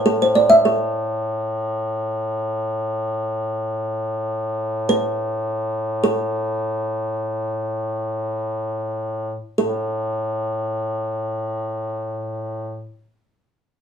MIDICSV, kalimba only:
0, 0, Header, 1, 2, 480
1, 0, Start_track
1, 0, Tempo, 500000
1, 13258, End_track
2, 0, Start_track
2, 0, Title_t, "Kalimba"
2, 0, Program_c, 0, 108
2, 55, Note_on_c, 0, 69, 63
2, 212, Note_on_c, 0, 72, 56
2, 224, Note_off_c, 0, 69, 0
2, 340, Note_on_c, 0, 74, 61
2, 341, Note_off_c, 0, 72, 0
2, 476, Note_on_c, 0, 76, 61
2, 484, Note_off_c, 0, 74, 0
2, 627, Note_on_c, 0, 69, 57
2, 640, Note_off_c, 0, 76, 0
2, 3122, Note_off_c, 0, 69, 0
2, 4695, Note_on_c, 0, 71, 68
2, 5795, Note_on_c, 0, 69, 65
2, 5837, Note_off_c, 0, 71, 0
2, 8864, Note_off_c, 0, 69, 0
2, 9198, Note_on_c, 0, 69, 60
2, 12415, Note_off_c, 0, 69, 0
2, 13258, End_track
0, 0, End_of_file